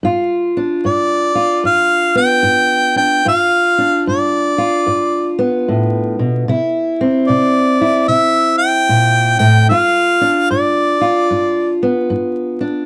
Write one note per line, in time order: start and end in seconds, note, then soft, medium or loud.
0.03 0.78 G2 medium
0.03 1.35 F4 medium
0.57 2.95 D4 medium
0.85 1.59 G2 medium
0.85 1.61 D5 medium
1.35 3.22 F4 medium
1.64 2.38 G2 medium
1.64 2.12 F5 loud
2.15 3.22 B3 medium
2.15 2.92 G5 loud
2.43 3.18 G2 medium
2.96 3.22 D4 medium
2.96 3.24 G5 loud
3.25 4.00 G2 medium
3.25 4.57 F4 medium
3.25 4.03 F5 medium
3.78 6.45 D4 medium
4.07 4.81 G2 medium
4.07 5.34 D5 medium
4.58 6.44 F4 medium
4.86 5.61 G2 medium
5.39 6.44 B3 medium
5.68 6.18 A2 medium
6.19 6.48 B2 medium
6.48 7.22 C3 medium
6.48 7.79 E4 medium
7.01 9.67 C4 medium
7.28 8.03 C3 medium
7.28 8.04 D5 medium
7.81 9.71 E4 medium
8.08 8.83 C3 medium
8.08 8.55 E5 medium
8.58 9.35 G5 loud
8.89 9.39 A#2 medium
9.39 9.69 A2 medium
9.39 9.67 G5 loud
9.69 10.44 G2 medium
9.69 11.00 F4 medium
9.69 10.46 F5 medium
10.21 12.59 D4 medium
10.50 11.25 G2 medium
10.50 11.77 D5 medium
11.01 12.86 F4 medium
11.31 12.05 G2 medium
11.83 12.86 B3 medium
12.10 12.85 G2 medium
12.61 12.86 D4 medium